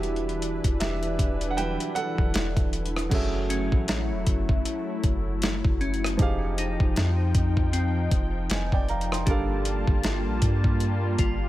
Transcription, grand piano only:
0.00 0.76 G3 medium
0.00 0.77 D4 medium
0.00 0.77 F#4 medium
0.00 0.77 G4 medium
0.00 0.79 E5 medium
0.80 1.48 G4 medium
0.80 1.54 E5 loud
1.50 1.57 F#5 medium
1.57 1.93 F#3 medium
1.57 1.92 G3 soft
1.57 1.92 D4 soft
1.57 1.94 B4 medium
1.57 1.97 G5 loud
1.95 2.69 A4 medium
1.95 2.68 F#5 loud
3.09 6.14 F#3 medium
3.09 6.15 C#4 medium
3.09 6.15 G#4 medium
3.09 6.16 A4 medium
3.14 6.17 E5 medium
6.17 8.45 F3 medium
6.17 8.46 D#4 medium
6.17 8.46 G4 medium
6.21 8.47 G#4 medium
6.21 8.47 F5 medium
8.51 8.72 D#5 medium
8.51 8.71 G#5 medium
8.73 8.88 D5 medium
8.73 8.88 G5 medium
8.89 9.10 F5 medium
8.89 9.10 A#5 medium
9.12 9.48 G5 medium
9.12 9.48 C6 medium
9.25 11.49 G3 medium
9.25 11.49 D4 medium
9.25 11.49 A4 medium
9.25 11.49 A#4 medium
9.31 11.49 F5 medium

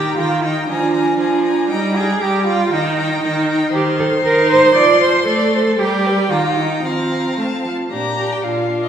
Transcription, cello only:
0.00 0.17 G4 soft
0.18 0.45 F4 medium
0.44 0.69 D#4 medium
0.69 1.72 D4 soft
1.70 1.98 D#4 medium
1.96 2.23 G#4 medium
2.22 2.47 G4 medium
2.47 2.75 F4 medium
2.73 3.74 D#4 medium
3.74 3.82 G4 medium
4.00 4.08 A4 medium
4.26 4.50 A#4 medium
4.51 4.75 C5 medium
4.76 5.00 D5 medium
5.01 5.26 C5 medium
5.27 5.80 A4 medium
5.79 6.32 G4 medium
6.31 6.59 F4 medium
6.58 6.84 D#4 medium
6.85 7.64 C4 soft
7.91 8.37 A#2 soft
8.43 8.88 A#2 soft

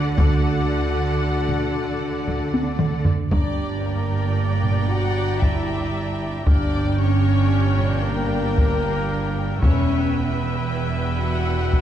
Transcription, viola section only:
0.00 0.16 A4 medium
0.00 0.13 D5 medium
0.18 3.08 A4 medium
0.18 3.08 D5 medium
3.32 6.43 G4 medium
3.32 6.43 D5 medium
6.46 9.57 D4 medium
6.46 9.58 G4 medium
9.61 11.81 B4 medium
9.61 11.81 E5 medium

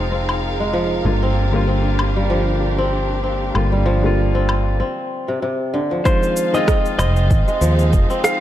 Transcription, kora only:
0.00 0.72 F3 medium
0.00 0.59 G#3 medium
0.00 0.11 C4 medium
0.11 1.22 C4 medium
0.60 1.10 G#3 medium
0.73 1.10 F3 medium
1.23 1.67 C4 medium
1.67 2.78 C4 medium
2.16 3.71 G3 medium
2.30 3.84 F3 medium
2.78 3.23 C4 medium
3.24 4.34 C4 medium
3.72 5.79 G3 medium
3.86 5.32 F3 loud
4.35 4.79 C4 loud
4.80 6.53 C4 medium
5.28 5.41 C3 medium
5.42 5.79 C3 medium
5.74 6.10 D3 medium
5.91 6.04 F3 medium
6.05 7.60 F3 loud
6.54 6.98 C4 loud
6.99 8.09 C4 medium
7.48 8.40 G#3 medium
7.61 8.40 F3 loud
8.10 8.40 C4 loud

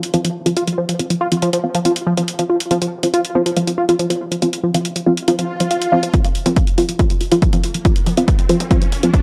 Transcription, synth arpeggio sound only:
0.14 0.21 F3 loud
0.25 0.29 F3 medium
0.46 0.51 F3 medium
0.57 0.64 F4 medium
0.78 0.85 F3 loud
0.89 0.93 F3 medium
1.10 1.15 F3 medium
1.21 1.28 F4 medium
1.42 1.49 F3 loud
1.53 1.58 F3 medium
1.75 1.79 F3 medium
1.85 1.92 F4 medium
2.07 2.14 F3 loud
2.17 2.22 F3 medium
2.39 2.43 F3 medium
2.50 2.56 F4 medium
2.71 2.78 F3 loud
2.82 2.86 F3 medium
3.03 3.08 F3 medium
3.14 3.21 F4 medium
3.35 3.42 F3 loud
3.46 3.51 F3 medium
3.67 3.72 F3 medium
3.78 3.85 F4 medium
3.99 4.06 F3 loud
4.10 4.15 F3 medium
4.32 4.36 F3 medium
4.42 4.49 F4 medium
4.63 4.71 F3 loud
4.74 4.79 F3 medium
4.96 5.00 F3 medium
5.06 5.13 F4 medium
5.28 5.35 F3 loud
5.39 5.43 F3 medium
5.60 5.65 F3 medium
5.71 5.78 F4 medium
5.92 5.99 F3 loud
6.03 6.08 F3 medium
6.14 6.21 F3 loud
6.25 6.29 F3 medium
6.46 6.51 F3 medium
6.57 6.64 F4 medium
6.78 6.85 F3 loud
6.89 6.93 F3 medium
7.10 7.15 F3 medium
7.21 7.28 F4 medium
7.42 7.49 F3 loud
7.53 7.58 F3 medium
7.75 7.79 F3 medium
7.85 7.92 F4 medium
8.07 8.14 F3 loud
8.39 8.43 F3 medium
8.49 8.56 F4 medium
8.71 8.78 F3 loud
8.82 8.86 F3 medium
9.03 9.08 F3 medium
9.14 9.21 F4 medium

